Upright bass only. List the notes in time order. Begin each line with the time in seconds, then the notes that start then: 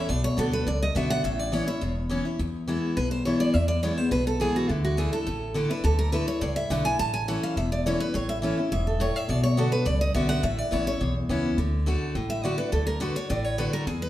0.09 B1
0.38 D2
0.67 C#2
0.95 B1
1.24 A1
1.82 E1
2.39 E2
2.97 B1
3.54 E2
4.11 B1
4.70 D2
5.27 A1
5.84 D2
6.42 C#2
6.70 B1
6.99 A1
7.56 E1
8.14 A1
8.72 E1
9.29 B1
9.86 C#2
10.15 B1
10.43 A1
10.72 A1
11.01 B1
11.29 C#2
11.58 D2
12.15 A1
12.72 D2
13.30 A1
13.87 E2